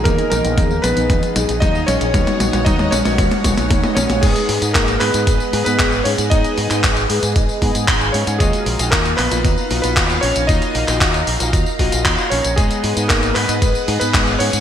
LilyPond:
<<
  \new Staff \with { instrumentName = "String machine" } { \time 4/4 \key aes \dorian \tempo 4 = 115 << { <aes' ees''>1 | <cis'' fis''>1 | <aes' ces'' ees''>1~ | <aes' ces'' ees''>1 |
<f'' bes''>1~ | <f'' bes''>1 | <aes' ces'' ees''>1 | } \\ { ees'1~ | ees'1 | aes1~ | aes1 |
ees'1~ | ees'1 | aes1 | } >> }
  \new Staff \with { instrumentName = "Analog polysynth" } { \time 4/4 \key aes \dorian <ces' ees' aes' ees''>8. <ces' ees' aes' ees''>8 r8 <ces' ees' aes' ees''>16 r8 <ces' ees' aes' ees''>8. <ces' ees' aes' f''>16 r8 | <b dis' fis' cis''>8. <b dis' fis' cis''>8 r8 <b dis' fis' cis''>16 r8 <b dis' fis' cis''>8. <b dis' fis' dis''>16 r8 | <ces' ees' aes' ees''>8. <ces' ees' aes' ees''>8 r8 <ces' ees' aes' ees''>16 r8 <ces' ees' aes' ees''>8. <ces' ees' aes' f''>16 r8 | <ces' ees' aes' ees''>8. <ces' ees' aes' ees''>8 r8 <ces' ees' aes' ees''>16 r8 <ces' ees' aes' ees''>8. <ces' ees' aes' f''>16 r8 |
<bes f' ges' ees''>8. <bes f' ges' ees''>8 r8 <bes f' ges' ees''>16 r8 <bes f' ges' ees''>8. <bes f' ges' f''>16 r8 | <bes f' ges' ees''>8. <bes f' ges' ees''>8 r8 <bes f' ges' ees''>16 r8 <bes f' ges' ees''>8. <bes f' ges' f''>16 r8 | <ces' ees' aes' ees''>8. <ces' ees' aes' ees''>8 r8 <ces' ees' aes' ees''>16 r8 <ces' ees' aes' ees''>8. <ces' ees' aes' f''>16 r8 | }
  \new Staff \with { instrumentName = "Electric grand piano" } { \time 4/4 \key aes \dorian <bes bes'>8 <bes bes'>4 <ces' ces''>4. <ees' ees''>8 <des' des''>8~ | <des' des''>4 <dis' dis''>8 <cis' cis''>2 <cis' cis''>8 | <aes aes'>4 <bes bes'>8 <ces' ces''>4~ <ces' ces''>16 <ces' ces''>8. <des' des''>8 | <ees' ees''>4 r2 r8 <des' des''>8 |
<aes aes'>4 <bes bes'>8 <ces' ces''>4~ <ces' ces''>16 <ces' ces''>8. <des' des''>8 | <ees' ees''>4 r2 r8 <des' des''>8 | <aes aes'>4 <bes bes'>8 <ces' ces''>4~ <ces' ces''>16 <ces' ces''>8. <des' des''>8 | }
  \new Staff \with { instrumentName = "Fingered electric bass" } { \clef bass \time 4/4 \key aes \dorian ees,16 r16 bes,,16 bes,,16 ees,8 bes,,16 bes,,16 ees,16 r16 bes,,16 bes,,16 ees,8 bes,,16 bes,,16 | dis,16 r16 bes,,16 bes,,16 dis,8 bes,,16 bes,,16 dis,16 r16 bes,,16 bes,,16 dis,16 r16 bes,,16 bes,,16 | aes,,16 r16 aes,16 aes,16 aes,,8 aes,16 aes,16 aes,,16 r16 aes,16 aes,16 aes,,8 aes,16 aes,16 | aes,,16 r16 aes,16 aes,16 aes,,8 aes,16 aes,16 aes,,16 r16 aes,16 aes,16 aes,,8 aes,16 aes,16 |
ees,16 r16 bes,,16 bes,,16 ees,8 bes,,16 bes,,16 ees,16 r16 bes,,16 bes,,16 ees,8 bes,,16 bes,,16 | ees,16 r16 bes,,16 bes,,16 ees,8 bes,,16 bes,,16 ees,16 r16 bes,,16 bes,,16 ees,16 r16 bes,,16 bes,,16 | aes,,16 r16 aes,16 aes,16 aes,,8 aes,16 aes,16 aes,,16 r16 aes,16 aes,16 aes,,8 aes,16 aes,16 | }
  \new DrumStaff \with { instrumentName = "Drums" } \drummode { \time 4/4 <hh bd tamb toml>16 <hh tamb>16 <hh tamb toml>16 <hh tamb>16 <hh bd tamb toml>16 tamb16 <hh tamb toml>16 <hh tamb>16 <hh bd tamb toml>16 <hh tamb>16 <hh tamb toml>16 <hh tamb>16 <hh bd tamb toml>16 tamb16 <hh tamb toml>16 <hh tamb>16 | <hh bd tamb toml>16 <hh tamb toml>16 <hh tamb toml>16 <hh tamb toml>16 <hh bd tamb toml>16 <tamb toml>16 <hh tamb toml>16 <hh tamb toml>16 <hh bd tamb toml>16 <hh tamb toml>16 <hh bd tamb toml>16 <hh tamb toml>16 <hh bd tamb toml>16 <tamb toml>16 <hh tamb toml>16 <hh tamb toml>16 | <cymc hh bd tamb>16 <hh tamb>16 hho16 <hh tamb>16 <hc hh bd tamb>16 <hh tamb>16 <hc hho>16 <hh tamb>16 <hh bd tamb>16 tamb16 hho16 <hh tamb>16 <hc hh bd tamb>16 tamb16 hho16 <hh tamb>16 | <hh bd tamb>16 <hh tamb>16 hho16 <hc hh tamb>16 <hc hh bd tamb>16 <hh tamb>16 hho16 <hh tamb>16 <hh bd tamb>16 tamb16 <hho bd>16 <hh tamb>16 <hc hh bd tamb>16 tamb16 hho16 <hh tamb>16 |
<hh bd tamb>16 <hh tamb>16 hho16 <hh tamb>16 <hc hh bd tamb>16 <hh tamb>16 <hc hho>16 <hh tamb>16 <hh bd tamb>16 tamb16 hho16 <hh tamb>16 <hc hh bd tamb>16 tamb16 hho16 <hh tamb>16 | <hh bd tamb>16 <hh tamb>16 hho16 <hc hh tamb>16 <hc hh bd tamb>16 <hh tamb>16 hho16 <hh tamb>16 <hh bd tamb>16 tamb16 <hho bd>16 <hh tamb>16 <hc hh bd tamb>16 tamb16 hho16 <hh tamb>16 | <hh bd tamb>16 <hh tamb>16 hho16 <hh tamb>16 <hc hh bd tamb>16 <hh tamb>16 <hc hho>16 <hh tamb>16 <hh bd tamb>16 tamb16 hho16 <hh tamb>16 <hc hh bd tamb>16 tamb16 hho16 <hh tamb>16 | }
>>